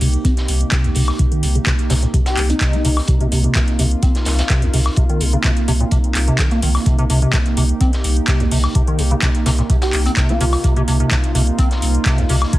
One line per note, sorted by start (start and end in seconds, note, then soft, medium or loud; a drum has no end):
0.00 0.17 C2 loud
0.00 12.59 C3 medium
0.00 0.08 C3 medium
0.00 12.59 A#3 medium
0.00 12.59 D#4 medium
0.00 3.07 G4 medium
0.00 closed hi-hat medium
0.00 open hi-hat loud
0.13 closed hi-hat soft
0.25 0.35 C4 medium
0.25 kick loud
0.25 closed hi-hat medium
0.37 snare medium
0.37 closed hi-hat soft
0.48 0.64 C2 medium
0.48 closed hi-hat medium
0.48 open hi-hat loud
0.61 closed hi-hat soft
0.71 0.86 C3 medium
0.71 kick loud
0.71 snare loud
0.71 clap loud
0.71 closed hi-hat medium
0.84 0.91 C2 medium
0.84 closed hi-hat soft
0.95 1.11 C2 medium
0.95 1.02 C3 medium
0.95 open hi-hat medium
0.95 open hi-hat loud
1.08 snare medium
1.08 closed hi-hat soft
1.08 high woodblock medium
1.19 1.26 C3 medium
1.19 kick loud
1.19 closed hi-hat medium
1.32 1.45 D#3 medium
1.32 closed hi-hat soft
1.43 1.58 C2 loud
1.43 1.47 C3 loud
1.43 closed hi-hat medium
1.43 open hi-hat loud
1.55 1.59 C#3 medium
1.55 closed hi-hat soft
1.66 1.73 C3 medium
1.66 kick loud
1.66 snare loud
1.66 clap loud
1.66 closed hi-hat medium
1.79 closed hi-hat soft
1.90 2.06 C2 loud
1.90 1.94 C3 loud
1.90 snare medium
1.90 closed hi-hat medium
1.90 open hi-hat loud
2.02 2.06 A#2 medium
2.02 closed hi-hat soft
2.14 2.21 C3 medium
2.14 kick loud
2.14 closed hi-hat medium
2.26 2.43 G4 medium
2.26 snare loud
2.26 closed hi-hat soft
2.26 closed hi-hat medium
2.37 2.53 C2 medium
2.37 clap medium
2.37 open hi-hat loud
2.50 2.56 C4 medium
2.50 2.97 D#4 medium
2.50 closed hi-hat soft
2.50 closed hi-hat medium
2.61 2.75 C3 medium
2.61 kick loud
2.61 snare loud
2.61 clap loud
2.61 closed hi-hat medium
2.73 2.80 C4 medium
2.73 closed hi-hat soft
2.85 3.00 C2 medium
2.85 2.89 C3 medium
2.85 closed hi-hat medium
2.85 open hi-hat loud
2.97 snare medium
2.97 open hi-hat medium
2.97 high woodblock medium
3.08 3.18 C3 medium
3.08 6.85 F4 medium
3.08 kick loud
3.08 closed hi-hat medium
3.21 3.27 C3 loud
3.21 closed hi-hat soft
3.32 3.47 C2 loud
3.32 3.42 C3 medium
3.32 closed hi-hat medium
3.32 open hi-hat loud
3.44 3.54 C3 medium
3.44 closed hi-hat soft
3.55 3.60 C3 loud
3.55 kick loud
3.55 snare loud
3.55 clap loud
3.55 closed hi-hat medium
3.68 closed hi-hat soft
3.79 3.95 C2 loud
3.79 3.86 C3 medium
3.79 closed hi-hat medium
3.79 open hi-hat loud
3.91 closed hi-hat soft
4.03 4.13 C4 medium
4.03 kick loud
4.03 closed hi-hat medium
4.15 snare medium
4.15 closed hi-hat soft
4.25 4.42 C2 medium
4.25 snare loud
4.25 closed hi-hat medium
4.25 open hi-hat loud
4.39 snare medium
4.39 closed hi-hat soft
4.39 closed hi-hat medium
4.49 4.64 C3 medium
4.49 kick loud
4.49 snare loud
4.49 clap loud
4.49 closed hi-hat medium
4.62 4.69 C2 medium
4.62 closed hi-hat soft
4.73 4.89 C2 medium
4.73 4.80 C3 medium
4.73 open hi-hat medium
4.73 open hi-hat loud
4.86 snare medium
4.86 closed hi-hat soft
4.86 high woodblock medium
4.96 5.04 C3 medium
4.96 kick loud
4.96 closed hi-hat medium
5.09 5.22 D#3 medium
5.09 closed hi-hat soft
5.21 5.36 C2 medium
5.21 5.25 C3 medium
5.21 closed hi-hat medium
5.21 open hi-hat loud
5.33 5.37 C#3 medium
5.33 closed hi-hat soft
5.44 5.51 C3 medium
5.44 kick loud
5.44 snare loud
5.44 clap loud
5.44 closed hi-hat medium
5.57 closed hi-hat soft
5.68 5.83 C2 loud
5.68 5.72 C3 loud
5.68 closed hi-hat medium
5.68 open hi-hat loud
5.80 5.84 A#2 medium
5.80 closed hi-hat soft
5.91 5.99 C3 medium
5.91 kick loud
5.91 closed hi-hat medium
6.04 closed hi-hat soft
6.15 6.31 C2 medium
6.15 clap medium
6.15 closed hi-hat medium
6.15 open hi-hat loud
6.28 6.41 C3 medium
6.28 closed hi-hat soft
6.39 6.49 D#3 medium
6.39 kick loud
6.39 snare loud
6.39 clap loud
6.39 closed hi-hat medium
6.51 6.61 A#3 medium
6.51 closed hi-hat soft
6.62 6.78 C2 loud
6.62 6.69 D#3 medium
6.62 closed hi-hat medium
6.62 open hi-hat loud
6.75 snare medium
6.75 open hi-hat medium
6.75 high woodblock medium
6.86 6.96 C3 medium
6.86 10.63 G4 medium
6.86 kick loud
6.86 closed hi-hat medium
6.99 7.05 C3 loud
6.99 closed hi-hat soft
7.10 7.25 C2 loud
7.10 7.20 C3 medium
7.10 closed hi-hat medium
7.10 open hi-hat loud
7.22 7.32 C3 medium
7.22 closed hi-hat soft
7.33 7.38 C3 loud
7.33 kick loud
7.33 snare loud
7.33 clap loud
7.33 closed hi-hat medium
7.46 closed hi-hat soft
7.57 7.72 C2 loud
7.57 7.64 C3 medium
7.57 closed hi-hat medium
7.57 open hi-hat loud
7.69 closed hi-hat soft
7.81 7.91 C4 medium
7.81 kick loud
7.81 closed hi-hat medium
7.93 snare medium
7.93 closed hi-hat soft
8.04 8.20 C2 loud
8.04 closed hi-hat medium
8.04 open hi-hat loud
8.17 closed hi-hat soft
8.28 8.42 C3 medium
8.28 kick loud
8.28 snare loud
8.28 clap loud
8.28 closed hi-hat medium
8.40 8.47 C2 medium
8.40 closed hi-hat soft
8.51 8.67 C2 medium
8.51 8.58 C3 medium
8.51 open hi-hat loud
8.51 open hi-hat medium
8.63 snare medium
8.63 closed hi-hat soft
8.63 high woodblock medium
8.75 8.82 C3 medium
8.75 kick loud
8.75 closed hi-hat medium
8.87 9.00 D#3 medium
8.87 closed hi-hat soft
8.99 9.14 C2 loud
8.99 9.03 C3 loud
8.99 closed hi-hat medium
8.99 open hi-hat medium
9.11 9.15 C#3 medium
9.11 closed hi-hat soft
9.22 9.29 C3 medium
9.22 kick loud
9.22 snare loud
9.22 clap loud
9.22 closed hi-hat medium
9.35 closed hi-hat soft
9.46 9.62 C2 loud
9.46 9.50 C3 loud
9.46 snare loud
9.46 closed hi-hat medium
9.46 open hi-hat loud
9.58 9.62 A#2 medium
9.58 closed hi-hat soft
9.70 9.77 C3 medium
9.70 kick loud
9.70 closed hi-hat medium
9.82 9.99 G4 loud
9.82 snare loud
9.82 closed hi-hat medium
9.82 closed hi-hat soft
9.93 10.09 C2 loud
9.93 clap medium
9.93 open hi-hat loud
10.06 10.12 C4 medium
10.06 closed hi-hat soft
10.06 closed hi-hat medium
10.17 10.31 C3 medium
10.17 kick loud
10.17 snare loud
10.17 clap loud
10.17 closed hi-hat medium
10.29 10.35 C4 medium
10.29 10.64 F4 loud
10.29 closed hi-hat soft
10.41 10.56 C2 medium
10.41 10.45 C3 loud
10.41 closed hi-hat medium
10.41 open hi-hat medium
10.52 snare medium
10.52 open hi-hat medium
10.52 high woodblock medium
10.64 10.74 C3 medium
10.64 12.59 F4 loud
10.64 kick loud
10.64 closed hi-hat medium
10.76 10.83 C3 loud
10.76 closed hi-hat soft
10.88 11.03 C2 loud
10.88 10.98 C3 medium
10.88 closed hi-hat medium
10.88 open hi-hat medium
11.00 11.09 C3 medium
11.00 closed hi-hat soft
11.11 11.15 C3 loud
11.11 kick loud
11.11 snare loud
11.11 clap loud
11.11 closed hi-hat medium
11.24 closed hi-hat soft
11.35 11.50 C2 loud
11.35 11.42 C3 medium
11.35 closed hi-hat medium
11.35 open hi-hat loud
11.47 closed hi-hat soft
11.59 11.69 C4 medium
11.59 kick loud
11.59 closed hi-hat medium
11.71 snare medium
11.71 closed hi-hat soft
11.82 11.98 C2 loud
11.82 closed hi-hat medium
11.82 open hi-hat loud
11.95 closed hi-hat soft
12.06 12.20 C3 medium
12.06 kick loud
12.06 snare loud
12.06 clap loud
12.06 closed hi-hat medium
12.06 closed hi-hat loud
12.18 12.24 C2 medium
12.18 closed hi-hat soft
12.29 12.45 C2 medium
12.29 12.36 C3 medium
12.29 open hi-hat medium
12.29 open hi-hat loud
12.42 snare soft
12.42 closed hi-hat soft
12.42 high woodblock medium
12.53 12.59 C3 medium
12.53 kick loud
12.53 closed hi-hat loud
12.53 closed hi-hat medium